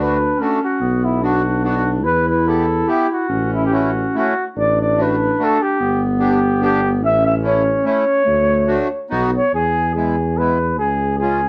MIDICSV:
0, 0, Header, 1, 5, 480
1, 0, Start_track
1, 0, Key_signature, 2, "major"
1, 0, Tempo, 414651
1, 941, Time_signature, 3, 2, 24, 8
1, 9571, Tempo, 420168
1, 13248, End_track
2, 0, Start_track
2, 0, Title_t, "Flugelhorn"
2, 0, Program_c, 0, 56
2, 6, Note_on_c, 0, 71, 72
2, 482, Note_on_c, 0, 69, 77
2, 499, Note_off_c, 0, 71, 0
2, 722, Note_off_c, 0, 69, 0
2, 745, Note_on_c, 0, 66, 66
2, 1214, Note_on_c, 0, 64, 64
2, 1231, Note_off_c, 0, 66, 0
2, 1433, Note_off_c, 0, 64, 0
2, 1442, Note_on_c, 0, 66, 75
2, 1876, Note_off_c, 0, 66, 0
2, 1914, Note_on_c, 0, 66, 81
2, 2241, Note_off_c, 0, 66, 0
2, 2384, Note_on_c, 0, 71, 99
2, 2607, Note_off_c, 0, 71, 0
2, 2641, Note_on_c, 0, 71, 82
2, 2870, Note_on_c, 0, 69, 76
2, 2887, Note_off_c, 0, 71, 0
2, 3346, Note_on_c, 0, 67, 91
2, 3363, Note_off_c, 0, 69, 0
2, 3586, Note_off_c, 0, 67, 0
2, 3614, Note_on_c, 0, 66, 76
2, 4047, Note_off_c, 0, 66, 0
2, 4096, Note_on_c, 0, 64, 74
2, 4223, Note_off_c, 0, 64, 0
2, 4231, Note_on_c, 0, 67, 69
2, 4331, Note_on_c, 0, 66, 72
2, 4348, Note_off_c, 0, 67, 0
2, 4799, Note_off_c, 0, 66, 0
2, 4832, Note_on_c, 0, 66, 90
2, 5152, Note_off_c, 0, 66, 0
2, 5304, Note_on_c, 0, 74, 90
2, 5522, Note_off_c, 0, 74, 0
2, 5576, Note_on_c, 0, 74, 77
2, 5812, Note_on_c, 0, 71, 83
2, 5829, Note_off_c, 0, 74, 0
2, 6294, Note_on_c, 0, 69, 92
2, 6311, Note_off_c, 0, 71, 0
2, 6509, Note_on_c, 0, 67, 78
2, 6527, Note_off_c, 0, 69, 0
2, 6974, Note_off_c, 0, 67, 0
2, 7219, Note_on_c, 0, 67, 77
2, 7646, Note_off_c, 0, 67, 0
2, 7687, Note_on_c, 0, 67, 98
2, 8010, Note_off_c, 0, 67, 0
2, 8159, Note_on_c, 0, 76, 107
2, 8377, Note_off_c, 0, 76, 0
2, 8399, Note_on_c, 0, 76, 93
2, 8499, Note_off_c, 0, 76, 0
2, 8633, Note_on_c, 0, 73, 83
2, 9069, Note_off_c, 0, 73, 0
2, 9119, Note_on_c, 0, 73, 96
2, 10505, Note_off_c, 0, 73, 0
2, 10810, Note_on_c, 0, 73, 92
2, 11017, Note_off_c, 0, 73, 0
2, 11035, Note_on_c, 0, 68, 94
2, 11477, Note_off_c, 0, 68, 0
2, 11496, Note_on_c, 0, 68, 76
2, 11979, Note_on_c, 0, 71, 95
2, 11996, Note_off_c, 0, 68, 0
2, 12446, Note_off_c, 0, 71, 0
2, 12453, Note_on_c, 0, 68, 88
2, 12899, Note_off_c, 0, 68, 0
2, 12909, Note_on_c, 0, 68, 87
2, 13248, Note_off_c, 0, 68, 0
2, 13248, End_track
3, 0, Start_track
3, 0, Title_t, "Accordion"
3, 0, Program_c, 1, 21
3, 0, Note_on_c, 1, 57, 55
3, 0, Note_on_c, 1, 62, 49
3, 0, Note_on_c, 1, 66, 60
3, 198, Note_off_c, 1, 57, 0
3, 202, Note_off_c, 1, 62, 0
3, 204, Note_off_c, 1, 66, 0
3, 461, Note_on_c, 1, 57, 56
3, 464, Note_on_c, 1, 62, 57
3, 467, Note_on_c, 1, 66, 59
3, 686, Note_off_c, 1, 57, 0
3, 688, Note_off_c, 1, 62, 0
3, 689, Note_off_c, 1, 66, 0
3, 1415, Note_on_c, 1, 59, 55
3, 1422, Note_on_c, 1, 62, 55
3, 1425, Note_on_c, 1, 66, 63
3, 1642, Note_off_c, 1, 59, 0
3, 1645, Note_off_c, 1, 62, 0
3, 1647, Note_off_c, 1, 66, 0
3, 1889, Note_on_c, 1, 59, 65
3, 1896, Note_on_c, 1, 62, 57
3, 1907, Note_on_c, 1, 66, 66
3, 2114, Note_off_c, 1, 59, 0
3, 2117, Note_off_c, 1, 62, 0
3, 2123, Note_off_c, 1, 66, 0
3, 2855, Note_on_c, 1, 59, 57
3, 2859, Note_on_c, 1, 64, 53
3, 2860, Note_on_c, 1, 67, 55
3, 3074, Note_off_c, 1, 59, 0
3, 3076, Note_off_c, 1, 64, 0
3, 3076, Note_off_c, 1, 67, 0
3, 3326, Note_on_c, 1, 59, 64
3, 3326, Note_on_c, 1, 67, 73
3, 3334, Note_on_c, 1, 64, 60
3, 3550, Note_off_c, 1, 59, 0
3, 3551, Note_off_c, 1, 67, 0
3, 3555, Note_off_c, 1, 64, 0
3, 4291, Note_on_c, 1, 57, 57
3, 4301, Note_on_c, 1, 61, 51
3, 4302, Note_on_c, 1, 64, 62
3, 4520, Note_off_c, 1, 57, 0
3, 4525, Note_off_c, 1, 61, 0
3, 4526, Note_off_c, 1, 64, 0
3, 4798, Note_on_c, 1, 57, 60
3, 4800, Note_on_c, 1, 61, 49
3, 4802, Note_on_c, 1, 64, 65
3, 5017, Note_off_c, 1, 57, 0
3, 5018, Note_off_c, 1, 61, 0
3, 5019, Note_off_c, 1, 64, 0
3, 5749, Note_on_c, 1, 57, 57
3, 5754, Note_on_c, 1, 62, 53
3, 5759, Note_on_c, 1, 66, 58
3, 5974, Note_off_c, 1, 57, 0
3, 5977, Note_off_c, 1, 62, 0
3, 5980, Note_off_c, 1, 66, 0
3, 6238, Note_on_c, 1, 57, 55
3, 6240, Note_on_c, 1, 62, 58
3, 6242, Note_on_c, 1, 66, 76
3, 6458, Note_off_c, 1, 57, 0
3, 6460, Note_off_c, 1, 62, 0
3, 6460, Note_off_c, 1, 66, 0
3, 7168, Note_on_c, 1, 59, 59
3, 7169, Note_on_c, 1, 62, 52
3, 7171, Note_on_c, 1, 67, 72
3, 7400, Note_off_c, 1, 59, 0
3, 7400, Note_off_c, 1, 62, 0
3, 7401, Note_off_c, 1, 67, 0
3, 7650, Note_on_c, 1, 59, 66
3, 7653, Note_on_c, 1, 62, 68
3, 7656, Note_on_c, 1, 67, 81
3, 7877, Note_off_c, 1, 59, 0
3, 7879, Note_off_c, 1, 62, 0
3, 7880, Note_off_c, 1, 67, 0
3, 8592, Note_on_c, 1, 57, 64
3, 8601, Note_on_c, 1, 61, 60
3, 8606, Note_on_c, 1, 64, 59
3, 8826, Note_off_c, 1, 57, 0
3, 8831, Note_off_c, 1, 61, 0
3, 8833, Note_off_c, 1, 64, 0
3, 9081, Note_on_c, 1, 57, 60
3, 9085, Note_on_c, 1, 61, 69
3, 9088, Note_on_c, 1, 64, 75
3, 9309, Note_off_c, 1, 57, 0
3, 9312, Note_off_c, 1, 61, 0
3, 9313, Note_off_c, 1, 64, 0
3, 10029, Note_on_c, 1, 57, 68
3, 10035, Note_on_c, 1, 62, 57
3, 10035, Note_on_c, 1, 66, 77
3, 10266, Note_off_c, 1, 57, 0
3, 10268, Note_off_c, 1, 62, 0
3, 10268, Note_off_c, 1, 66, 0
3, 10518, Note_on_c, 1, 59, 75
3, 10521, Note_on_c, 1, 66, 81
3, 10524, Note_on_c, 1, 63, 73
3, 10756, Note_off_c, 1, 59, 0
3, 10757, Note_off_c, 1, 66, 0
3, 10758, Note_off_c, 1, 63, 0
3, 11502, Note_on_c, 1, 56, 48
3, 11503, Note_on_c, 1, 59, 49
3, 11509, Note_on_c, 1, 64, 56
3, 11728, Note_off_c, 1, 56, 0
3, 11729, Note_off_c, 1, 59, 0
3, 11732, Note_off_c, 1, 64, 0
3, 11991, Note_on_c, 1, 59, 51
3, 11993, Note_on_c, 1, 56, 58
3, 12001, Note_on_c, 1, 64, 58
3, 12211, Note_off_c, 1, 59, 0
3, 12212, Note_off_c, 1, 56, 0
3, 12216, Note_off_c, 1, 64, 0
3, 12939, Note_on_c, 1, 56, 56
3, 12944, Note_on_c, 1, 65, 63
3, 12945, Note_on_c, 1, 61, 44
3, 13159, Note_off_c, 1, 56, 0
3, 13162, Note_off_c, 1, 61, 0
3, 13162, Note_off_c, 1, 65, 0
3, 13248, End_track
4, 0, Start_track
4, 0, Title_t, "Clarinet"
4, 0, Program_c, 2, 71
4, 0, Note_on_c, 2, 62, 92
4, 445, Note_on_c, 2, 61, 98
4, 463, Note_off_c, 2, 62, 0
4, 941, Note_on_c, 2, 59, 85
4, 958, Note_off_c, 2, 61, 0
4, 1415, Note_on_c, 2, 62, 90
4, 1432, Note_off_c, 2, 59, 0
4, 2357, Note_on_c, 2, 64, 107
4, 2375, Note_off_c, 2, 62, 0
4, 3801, Note_off_c, 2, 64, 0
4, 3808, Note_on_c, 2, 61, 105
4, 4987, Note_off_c, 2, 61, 0
4, 5271, Note_on_c, 2, 62, 94
4, 6713, Note_on_c, 2, 59, 96
4, 6731, Note_off_c, 2, 62, 0
4, 8140, Note_on_c, 2, 61, 92
4, 8157, Note_off_c, 2, 59, 0
4, 9540, Note_off_c, 2, 61, 0
4, 9547, Note_on_c, 2, 57, 86
4, 10167, Note_off_c, 2, 57, 0
4, 10537, Note_on_c, 2, 59, 70
4, 10988, Note_off_c, 2, 59, 0
4, 13248, End_track
5, 0, Start_track
5, 0, Title_t, "Tuba"
5, 0, Program_c, 3, 58
5, 0, Note_on_c, 3, 38, 98
5, 429, Note_off_c, 3, 38, 0
5, 937, Note_on_c, 3, 35, 87
5, 2372, Note_on_c, 3, 40, 90
5, 2389, Note_off_c, 3, 35, 0
5, 3306, Note_off_c, 3, 40, 0
5, 3811, Note_on_c, 3, 33, 85
5, 4759, Note_off_c, 3, 33, 0
5, 5281, Note_on_c, 3, 33, 89
5, 6215, Note_off_c, 3, 33, 0
5, 6717, Note_on_c, 3, 31, 86
5, 8131, Note_on_c, 3, 33, 99
5, 8149, Note_off_c, 3, 31, 0
5, 9066, Note_off_c, 3, 33, 0
5, 9573, Note_on_c, 3, 38, 83
5, 10200, Note_off_c, 3, 38, 0
5, 10538, Note_on_c, 3, 35, 87
5, 10853, Note_off_c, 3, 35, 0
5, 11018, Note_on_c, 3, 40, 84
5, 12464, Note_on_c, 3, 37, 84
5, 12481, Note_off_c, 3, 40, 0
5, 13248, Note_off_c, 3, 37, 0
5, 13248, End_track
0, 0, End_of_file